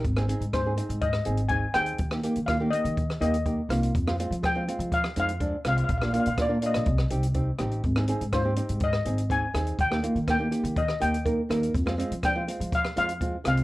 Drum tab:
HH |x-xxx-xxx-xxx-xx|x-xxx-xxx-xxx-xx|x-xxx-xxx-xxx-xx|x-xxx-xxx-xxx-xx|
SD |-r--r----r----r-|-r--r----r----r-|-r--r----r----r-|-r--r--r-r----r-|
BD |o---o---o---o---|o---o---o---o---|o---o---o---o---|o---o---o---o---|

HH |x-xxx-xxx-xxx-xx|x-xxx-xxx-xxx-xx|x-xxx-xxx-xxx-xx|
SD |-r--r----r----r-|-r--r----r----r-|-r--r----r----r-|
BD |o---o---o---o---|o---o---o---o---|o---o---o---o---|